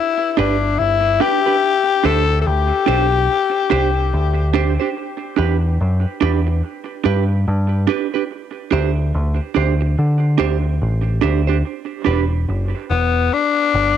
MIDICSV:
0, 0, Header, 1, 5, 480
1, 0, Start_track
1, 0, Key_signature, 1, "minor"
1, 0, Tempo, 834492
1, 932, Time_signature, 4, 2, 24, 8
1, 8038, End_track
2, 0, Start_track
2, 0, Title_t, "Clean electric guitar"
2, 0, Program_c, 0, 27
2, 213, Note_on_c, 0, 62, 84
2, 217, Note_on_c, 0, 67, 92
2, 223, Note_on_c, 0, 71, 93
2, 320, Note_off_c, 0, 62, 0
2, 322, Note_off_c, 0, 67, 0
2, 325, Note_off_c, 0, 71, 0
2, 692, Note_on_c, 0, 62, 84
2, 697, Note_on_c, 0, 67, 84
2, 701, Note_on_c, 0, 71, 80
2, 799, Note_off_c, 0, 62, 0
2, 802, Note_off_c, 0, 67, 0
2, 804, Note_off_c, 0, 71, 0
2, 840, Note_on_c, 0, 71, 68
2, 846, Note_on_c, 0, 67, 57
2, 850, Note_on_c, 0, 62, 50
2, 892, Note_off_c, 0, 71, 0
2, 895, Note_off_c, 0, 67, 0
2, 897, Note_off_c, 0, 62, 0
2, 1171, Note_on_c, 0, 62, 73
2, 1176, Note_on_c, 0, 67, 91
2, 1181, Note_on_c, 0, 72, 86
2, 1278, Note_off_c, 0, 62, 0
2, 1281, Note_off_c, 0, 67, 0
2, 1283, Note_off_c, 0, 72, 0
2, 1647, Note_on_c, 0, 62, 86
2, 1652, Note_on_c, 0, 67, 84
2, 1656, Note_on_c, 0, 72, 109
2, 1756, Note_off_c, 0, 62, 0
2, 1759, Note_off_c, 0, 67, 0
2, 1761, Note_off_c, 0, 72, 0
2, 2129, Note_on_c, 0, 62, 81
2, 2134, Note_on_c, 0, 67, 102
2, 2137, Note_on_c, 0, 72, 97
2, 2237, Note_off_c, 0, 62, 0
2, 2240, Note_off_c, 0, 67, 0
2, 2241, Note_off_c, 0, 72, 0
2, 2609, Note_on_c, 0, 62, 83
2, 2614, Note_on_c, 0, 67, 91
2, 2619, Note_on_c, 0, 72, 91
2, 2717, Note_off_c, 0, 62, 0
2, 2720, Note_off_c, 0, 67, 0
2, 2722, Note_off_c, 0, 72, 0
2, 2759, Note_on_c, 0, 72, 60
2, 2765, Note_on_c, 0, 67, 55
2, 2769, Note_on_c, 0, 62, 50
2, 2810, Note_off_c, 0, 72, 0
2, 2813, Note_off_c, 0, 67, 0
2, 2815, Note_off_c, 0, 62, 0
2, 3086, Note_on_c, 0, 62, 71
2, 3093, Note_on_c, 0, 67, 74
2, 3098, Note_on_c, 0, 71, 71
2, 3196, Note_off_c, 0, 62, 0
2, 3199, Note_off_c, 0, 67, 0
2, 3201, Note_off_c, 0, 71, 0
2, 3570, Note_on_c, 0, 62, 91
2, 3576, Note_on_c, 0, 67, 87
2, 3580, Note_on_c, 0, 71, 93
2, 3678, Note_off_c, 0, 62, 0
2, 3681, Note_off_c, 0, 67, 0
2, 3682, Note_off_c, 0, 71, 0
2, 4049, Note_on_c, 0, 62, 74
2, 4055, Note_on_c, 0, 67, 89
2, 4059, Note_on_c, 0, 71, 97
2, 4157, Note_off_c, 0, 62, 0
2, 4160, Note_off_c, 0, 67, 0
2, 4162, Note_off_c, 0, 71, 0
2, 4529, Note_on_c, 0, 62, 88
2, 4533, Note_on_c, 0, 67, 87
2, 4539, Note_on_c, 0, 71, 84
2, 4637, Note_off_c, 0, 62, 0
2, 4639, Note_off_c, 0, 67, 0
2, 4642, Note_off_c, 0, 71, 0
2, 4681, Note_on_c, 0, 71, 57
2, 4686, Note_on_c, 0, 67, 52
2, 4690, Note_on_c, 0, 62, 49
2, 4732, Note_off_c, 0, 71, 0
2, 4734, Note_off_c, 0, 67, 0
2, 4736, Note_off_c, 0, 62, 0
2, 5010, Note_on_c, 0, 62, 77
2, 5015, Note_on_c, 0, 67, 78
2, 5021, Note_on_c, 0, 72, 77
2, 5118, Note_off_c, 0, 62, 0
2, 5121, Note_off_c, 0, 67, 0
2, 5123, Note_off_c, 0, 72, 0
2, 5491, Note_on_c, 0, 62, 76
2, 5497, Note_on_c, 0, 67, 78
2, 5502, Note_on_c, 0, 72, 85
2, 5599, Note_off_c, 0, 62, 0
2, 5602, Note_off_c, 0, 67, 0
2, 5604, Note_off_c, 0, 72, 0
2, 5971, Note_on_c, 0, 62, 93
2, 5976, Note_on_c, 0, 67, 106
2, 5980, Note_on_c, 0, 72, 101
2, 6079, Note_off_c, 0, 62, 0
2, 6081, Note_off_c, 0, 67, 0
2, 6083, Note_off_c, 0, 72, 0
2, 6450, Note_on_c, 0, 62, 75
2, 6455, Note_on_c, 0, 67, 77
2, 6460, Note_on_c, 0, 72, 73
2, 6559, Note_off_c, 0, 62, 0
2, 6561, Note_off_c, 0, 67, 0
2, 6563, Note_off_c, 0, 72, 0
2, 6600, Note_on_c, 0, 72, 58
2, 6607, Note_on_c, 0, 67, 50
2, 6611, Note_on_c, 0, 62, 54
2, 6652, Note_off_c, 0, 72, 0
2, 6655, Note_off_c, 0, 67, 0
2, 6657, Note_off_c, 0, 62, 0
2, 6929, Note_on_c, 0, 62, 75
2, 6933, Note_on_c, 0, 67, 71
2, 6938, Note_on_c, 0, 71, 82
2, 7038, Note_off_c, 0, 62, 0
2, 7040, Note_off_c, 0, 67, 0
2, 7043, Note_off_c, 0, 71, 0
2, 8038, End_track
3, 0, Start_track
3, 0, Title_t, "Tenor saxophone"
3, 0, Program_c, 1, 66
3, 0, Note_on_c, 1, 64, 97
3, 186, Note_off_c, 1, 64, 0
3, 186, Note_on_c, 1, 64, 63
3, 218, Note_on_c, 1, 62, 81
3, 227, Note_off_c, 1, 64, 0
3, 453, Note_on_c, 1, 64, 98
3, 461, Note_off_c, 1, 62, 0
3, 699, Note_on_c, 1, 67, 113
3, 707, Note_off_c, 1, 64, 0
3, 1181, Note_on_c, 1, 69, 99
3, 1189, Note_off_c, 1, 67, 0
3, 1386, Note_off_c, 1, 69, 0
3, 1389, Note_on_c, 1, 69, 64
3, 1419, Note_on_c, 1, 67, 100
3, 1427, Note_off_c, 1, 69, 0
3, 2614, Note_off_c, 1, 67, 0
3, 7421, Note_on_c, 1, 59, 91
3, 7670, Note_on_c, 1, 62, 110
3, 7679, Note_off_c, 1, 59, 0
3, 8038, Note_off_c, 1, 62, 0
3, 8038, End_track
4, 0, Start_track
4, 0, Title_t, "Picked electric bass"
4, 0, Program_c, 2, 34
4, 222, Note_on_c, 2, 31, 89
4, 444, Note_off_c, 2, 31, 0
4, 460, Note_on_c, 2, 31, 84
4, 682, Note_off_c, 2, 31, 0
4, 1178, Note_on_c, 2, 38, 99
4, 1401, Note_off_c, 2, 38, 0
4, 1419, Note_on_c, 2, 38, 91
4, 1556, Note_off_c, 2, 38, 0
4, 1658, Note_on_c, 2, 35, 84
4, 1881, Note_off_c, 2, 35, 0
4, 2140, Note_on_c, 2, 36, 79
4, 2362, Note_off_c, 2, 36, 0
4, 2378, Note_on_c, 2, 38, 85
4, 2742, Note_off_c, 2, 38, 0
4, 3098, Note_on_c, 2, 40, 88
4, 3321, Note_off_c, 2, 40, 0
4, 3342, Note_on_c, 2, 42, 85
4, 3477, Note_off_c, 2, 42, 0
4, 3580, Note_on_c, 2, 40, 86
4, 3802, Note_off_c, 2, 40, 0
4, 4058, Note_on_c, 2, 43, 86
4, 4281, Note_off_c, 2, 43, 0
4, 4301, Note_on_c, 2, 43, 96
4, 4523, Note_off_c, 2, 43, 0
4, 5019, Note_on_c, 2, 38, 100
4, 5242, Note_off_c, 2, 38, 0
4, 5261, Note_on_c, 2, 38, 93
4, 5397, Note_off_c, 2, 38, 0
4, 5501, Note_on_c, 2, 38, 92
4, 5723, Note_off_c, 2, 38, 0
4, 5744, Note_on_c, 2, 50, 115
4, 5965, Note_off_c, 2, 50, 0
4, 5981, Note_on_c, 2, 38, 75
4, 6203, Note_off_c, 2, 38, 0
4, 6222, Note_on_c, 2, 33, 81
4, 6444, Note_off_c, 2, 33, 0
4, 6461, Note_on_c, 2, 38, 88
4, 6683, Note_off_c, 2, 38, 0
4, 6941, Note_on_c, 2, 28, 92
4, 7163, Note_off_c, 2, 28, 0
4, 7182, Note_on_c, 2, 30, 96
4, 7318, Note_off_c, 2, 30, 0
4, 7421, Note_on_c, 2, 28, 90
4, 7644, Note_off_c, 2, 28, 0
4, 7904, Note_on_c, 2, 31, 89
4, 8038, Note_off_c, 2, 31, 0
4, 8038, End_track
5, 0, Start_track
5, 0, Title_t, "Muted clean electric guitar strokes"
5, 1797, Note_on_c, 9, 29, 35
5, 1854, Note_off_c, 9, 29, 0
5, 3720, Note_on_c, 9, 29, 46
5, 3777, Note_off_c, 9, 29, 0
5, 5642, Note_on_c, 9, 29, 49
5, 5699, Note_off_c, 9, 29, 0
5, 8038, End_track
0, 0, End_of_file